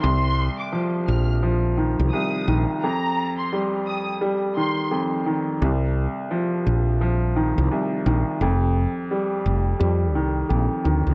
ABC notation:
X:1
M:4/4
L:1/16
Q:"Swing 16ths" 1/4=86
K:Cm
V:1 name="Violin section"
c'3 d' z2 f' z4 z e'2 z2 | b3 c' z2 e' z3 c'2 z4 | z16 | z16 |]
V:2 name="Upright piano" clef=bass
C,,4 F,4 F,2 E,2 C,,2 E,2 | F,,4 G,4 G,2 E,2 F,,2 E,2 | C,,4 F,4 F,2 E,2 C,,2 E,2 | F,,4 G,4 G,2 E,2 F,,2 E,2 |]
V:3 name="Fretless electric bass" clef=bass
C,,3 z3 B,,,4- B,,, C,, z2 B,,, z | z16 | C,,3 z3 B,,,4- B,,, C,, z2 B,,, z | F,,,3 z3 F,,,2 F,,2 C,,2 B,,, z D,, _D,, |]